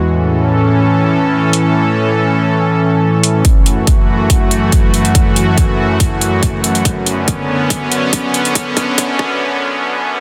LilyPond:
<<
  \new Staff \with { instrumentName = "Supersaw synth" } { \time 4/4 \key fis \minor \tempo 4 = 141 << { <e cis' a'>1~ | <e cis' a'>1 | <e a fis'>1~ | <e a fis'>1 |
<d b cis'>1~ | <d b cis'>1 | } \\ { a,1~ | a,1 | fis,1~ | fis,1~ |
fis,1~ | fis,1 | } >> }
  \new DrumStaff \with { instrumentName = "Drums" } \drummode { \time 4/4 r4 r4 r4 r8 hho8 | r4 r4 r4 r8 hho8 | <hh bd>8 hh8 <hh bd>4 <hh bd>8 hh8 <hh bd>8 hh16 hh16 | <hh bd>8 hh8 <hh bd>4 <hh bd>8 hh8 <hh bd>8 hh16 hh16 |
<hh bd>8 hh8 <hh bd>4 <hh bd>8 hh8 <hh bd>8 hh16 hh16 | <hh bd>8 <hh bd>8 <hh bd>8 bd8 r4 r4 | }
>>